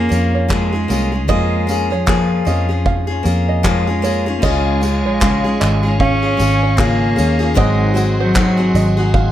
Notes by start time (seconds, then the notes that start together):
Already playing: A#3 F4
0.09 F2 A#3 C#4 F4 G#4, tambourine
0.35 C#5
0.48 F3 A#3 C#4 F4 G#4, kick, clap
0.53 G#3
0.73 C#4 F4 G#4
0.88 C2 A#3 C#4 F4 G#4, tambourine
1.12 C#4 F4 G#4
1.28 F2 F3 G#3 A#3 C#4 F4 G#4 D#5, kick
1.67 A#3 C#4 F4 G#4, tambourine
1.90 F3 C#4 F4 G#4 C#5
2.06 F3 A#3 C#4 F4 G#4, kick, clap
2.45 F2 A#3 C#4 F4 G#4 D#5, tambourine
2.69 C#4 F4 G#4
2.86 F5, kick
3.07 C#4 F4 G#4
3.23 F2 A#3 C#4 F4 G#4, tambourine
3.49 D#5
3.63 F3 G#3 A#3 C#4 F4 G#4, kick, clap
3.87 C#4 F4 G#4
4.02 A#3 C#4 F4 G#4 C#5, tambourine
4.26 C#4 F4 G#4
4.37 A#3
4.42 C#2 C#3 G#3 C#4 F4 G#4 C#5 D#5 F5, kick, crash
4.81 G#3 C#4 F4 G#4, tambourine
5.06 A#1 C#5
5.20 C#3 G#3 C#4 F4 G#4, kick, clap
5.44 C#4 F4 G#4
5.60 G#1 D#5, clap, tambourine
5.83 C#4 F4 G#4
6.00 C#4 F5, kick
6.22 C#4 F4 G#4
6.37 G#1 G#3 C#4 F4 G#4, tambourine
6.63 C#5
6.77 C#3 G#3 A#3 C#4 F4 G#4, kick, clap
7.16 D#2 G#3 C#4 F4 G#4, tambourine
7.39 C#4 F4 G#4
7.54 G#1 G#2 D#3 F#3 G#3 C4 F#4 G#4 D#5 F#5, kick
7.58 C6
7.94 F#3 C4 F#4 G#4, tambourine
8.20 F#3 C5
8.34 G#2 D#3 F#3 C4 F#4 G#4, kick, clap
8.57 F#3 C4 F#4 G#4
8.74 G#1 D#5, tambourine
8.97 F#3 C4 F#4 G#4
9.14 F5, kick